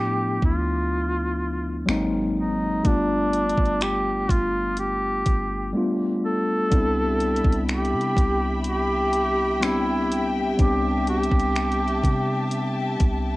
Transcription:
0.00 0.40 A2 medium
0.00 0.43 F3 medium
0.00 0.44 A3 medium
0.00 0.44 B3 medium
0.00 0.45 D4 medium
0.00 0.45 E4 medium
0.00 0.44 G4 loud
0.42 1.84 D2 loud
0.42 1.85 F4 medium
0.42 kick medium
1.86 2.81 G#1 loud
1.86 2.60 F#3 medium
1.86 2.61 G#3 medium
1.86 2.61 A#3 medium
1.86 2.62 C4 medium
1.86 finger snap loud
1.90 2.62 D#4 loud
2.38 2.88 D#4 medium
2.83 3.54 G1 loud
2.83 4.30 G3 medium
2.83 4.31 A3 medium
2.83 4.31 B3 medium
2.83 4.32 D4 medium
2.83 3.84 D4 loud
2.83 kick loud
2.83 closed hi-hat medium
2.87 4.32 F4 medium
3.33 closed hi-hat medium
3.49 closed hi-hat soft
3.57 4.27 G1 loud
3.57 kick medium
3.65 closed hi-hat soft
3.81 4.32 G4 loud
3.81 finger snap loud
3.81 closed hi-hat medium
4.29 5.23 G1 loud
4.29 4.79 F4 medium
4.29 kick medium
4.29 closed hi-hat medium
4.77 5.72 G4 loud
4.77 closed hi-hat medium
5.26 5.73 G1 loud
5.26 kick medium
5.26 closed hi-hat medium
5.73 6.47 G3 medium
5.73 6.48 A3 medium
5.73 6.48 B3 medium
5.73 6.49 D4 medium
5.77 6.49 F4 medium
6.25 7.65 A4 loud
6.70 7.42 C2 loud
6.70 8.17 G3 medium
6.70 8.18 B3 medium
6.70 8.18 C4 medium
6.70 8.19 D4 medium
6.70 13.37 G4 medium
6.70 13.37 E5 medium
6.70 13.37 G5 medium
6.70 10.55 B5 medium
6.70 kick loud
6.70 closed hi-hat medium
6.74 8.19 E4 medium
7.20 closed hi-hat medium
7.36 closed hi-hat medium
7.44 7.94 C2 loud
7.44 kick medium
7.52 closed hi-hat soft
7.69 8.62 G4 loud
7.69 finger snap loud
7.69 closed hi-hat soft
7.85 closed hi-hat soft
7.93 8.16 C3 loud
8.01 closed hi-hat soft
8.17 10.55 C2 loud
8.17 kick medium
8.17 closed hi-hat medium
8.64 9.66 G4 loud
8.64 closed hi-hat medium
9.13 closed hi-hat medium
9.60 10.34 G3 medium
9.60 10.35 B3 medium
9.60 10.36 C4 medium
9.60 10.36 D4 medium
9.60 finger snap loud
9.60 closed hi-hat medium
9.64 10.33 E4 medium
9.64 10.37 G4 medium
10.12 closed hi-hat medium
10.57 11.29 C2 loud
10.57 12.04 G3 medium
10.57 12.05 B3 medium
10.57 12.06 C4 medium
10.57 12.06 D4 medium
10.57 11.05 G4 medium
10.57 13.37 A5 medium
10.57 kick loud
10.57 closed hi-hat medium
10.61 12.07 G4 medium
11.07 12.98 G4 loud
11.07 closed hi-hat medium
11.24 closed hi-hat medium
11.32 12.01 C2 loud
11.32 kick medium
11.40 closed hi-hat soft
11.56 finger snap loud
11.56 closed hi-hat soft
11.72 closed hi-hat soft
11.88 closed hi-hat soft
12.04 12.97 C3 loud
12.04 kick medium
12.04 closed hi-hat medium
12.51 closed hi-hat medium
13.00 13.37 C2 loud
13.00 kick medium
13.00 closed hi-hat medium

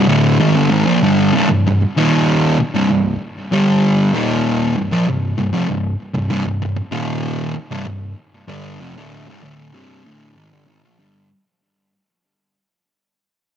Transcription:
0.07 0.39 D2 loud
0.07 0.39 A2 loud
0.07 0.39 D3 loud
0.40 0.55 G#2 medium
0.40 0.55 D#3 loud
0.56 0.69 G2 medium
0.56 0.70 D3 loud
0.70 0.85 G#2 loud
0.70 0.86 D#3 loud
0.86 1.01 A#2 medium
0.86 1.02 F3 loud
1.02 1.33 G2 medium
1.02 1.33 D3 loud
1.02 1.33 G3 loud
1.33 1.48 C2 loud
1.33 1.48 G2 loud
1.49 1.65 C2 medium
1.49 1.65 G2 medium
1.66 1.80 C2 medium
1.66 1.81 G2 medium
1.81 muted distorted electric guitar stroke medium
1.97 2.57 D#2 loud
1.97 2.58 A#2 loud
1.97 2.58 D#3 loud
2.60 muted distorted electric guitar stroke medium
2.74 2.88 C2 medium
2.74 2.89 G2 medium
2.90 3.14 C2 medium
2.90 3.15 G2 medium
3.52 4.12 G2 medium
3.52 4.13 D3 medium
3.52 4.13 G3 medium
4.14 4.74 D#2 medium
4.14 4.75 A#2 medium
4.14 4.75 D#3 medium
4.76 4.91 C2 medium
4.76 4.91 G2 medium
4.91 5.06 A#2 medium
4.91 5.06 F3 medium
5.08 5.32 C2 medium
5.08 5.32 G2 medium
5.38 5.52 C2 medium
5.38 5.53 G2 medium
5.53 5.67 F2 medium
5.53 5.68 C3 medium
5.69 5.93 C2 medium
5.69 5.93 G2 medium
6.14 6.29 C2 medium
6.14 6.29 G2 medium
6.30 6.44 C2 medium
6.30 6.45 G2 loud
6.45 6.61 C2 medium
6.45 6.61 G2 medium
6.62 6.75 C2 medium
6.62 6.77 G2 medium
6.76 muted distorted electric guitar stroke medium
6.92 7.53 D#2 loud
6.92 7.53 A#2 loud
6.92 7.54 D#3 loud
7.55 muted distorted electric guitar stroke medium
7.71 7.85 C2 medium
7.71 7.86 G2 medium
7.87 8.11 C2 medium
7.87 8.11 G2 medium
8.48 8.78 G2 medium
8.48 8.79 D3 medium
8.48 8.79 G3 medium
8.81 8.95 F2 medium
8.81 8.95 C3 loud
8.97 9.26 D2 medium
8.97 9.26 A2 medium
8.97 9.26 D3 medium
9.27 9.41 C2 medium
9.27 9.42 G2 loud
9.43 9.73 D2 loud
9.43 9.73 A2 loud
9.43 9.73 D3 loud
9.73 10.03 C2 medium
9.73 10.03 G2 medium
9.73 10.04 C3 medium
10.05 10.35 D2 medium
10.05 10.35 A2 medium
10.05 10.35 D3 loud
10.36 10.50 G#2 medium
10.36 10.51 D#3 medium
10.52 10.66 G2 medium
10.52 10.66 D3 loud
10.67 10.81 G#2 medium
10.67 10.81 D#3 medium
10.84 10.97 A#2 medium
10.84 10.98 F3 medium
10.99 11.28 G2 medium
10.99 11.29 D3 medium
10.99 11.29 G3 medium

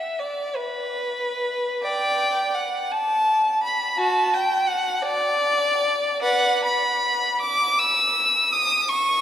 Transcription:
0.00 0.19 E5 medium
0.19 0.57 D5 medium
0.56 1.82 B4 medium
1.82 2.53 D5 medium
1.82 2.56 G5 loud
2.55 2.92 F#5 medium
2.91 3.62 A5 loud
3.63 3.97 B5 loud
3.97 4.30 F#4 medium
3.97 4.32 A5 loud
4.33 4.68 G5 loud
4.67 5.03 F#5 loud
5.02 6.22 D5 loud
6.22 6.63 B4 medium
6.22 6.65 F#5 loud
6.64 7.40 B5 loud
7.41 7.77 D6 loud
7.79 8.53 E6 loud
8.53 8.90 D#6 loud
8.89 9.21 C#6 loud

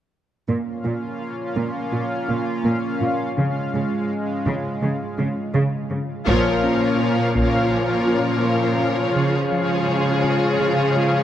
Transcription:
0.48 0.56 A#2 soft
0.48 0.70 A#3 medium
0.48 3.34 A#3 medium
0.48 6.23 C#4 medium
0.48 6.23 F4 medium
0.48 6.23 F5 soft
0.84 0.92 A#2 soft
0.84 1.06 F4 soft
1.56 1.64 A#2 soft
1.56 1.79 A#3 medium
1.93 2.01 A#2 soft
1.93 2.15 F4 soft
2.29 2.37 A#2 soft
2.29 2.51 F4 soft
2.65 2.73 A#2 soft
2.65 2.87 A#3 medium
3.01 3.09 A#2 soft
3.01 3.23 F4 medium
3.37 3.59 C#3 medium
3.37 3.45 C#3 medium
3.37 6.27 G#3 medium
3.73 3.81 C#3 soft
3.73 3.96 G#3 soft
4.46 4.68 C#3 medium
4.46 4.54 C#3 medium
4.82 4.90 C#3 soft
4.82 5.04 G#3 medium
5.18 5.26 C#3 soft
5.18 5.40 G#3 medium
5.54 5.76 C#3 medium
5.54 5.63 C#3 medium
5.91 5.99 C#3 soft
5.91 6.12 G#3 soft
6.26 9.12 A#2 medium
6.26 11.23 F3 medium
6.26 6.49 A#3 medium
6.26 9.12 A#3 medium
6.26 11.23 C#4 medium
6.26 11.23 F4 soft
6.26 11.23 F4 medium
6.26 9.12 A#4 medium
6.26 11.23 C#5 soft
6.26 11.23 F5 medium
6.26 taiko soft
6.63 6.85 C#4 medium
6.99 7.21 C#4 soft
7.35 7.57 A#3 medium
7.35 taiko soft
7.72 7.93 F4 soft
8.08 8.29 F4 soft
8.44 8.66 A#3 medium
8.80 9.02 F4 medium
9.16 9.38 C#3 medium
9.16 11.23 C#3 soft
9.16 11.23 G#3 soft
9.16 11.23 G#4 soft
9.52 9.74 F3 soft
9.88 10.10 F3 soft
10.24 10.46 C#3 medium
10.61 10.82 G#3 soft
10.97 11.18 G#3 medium

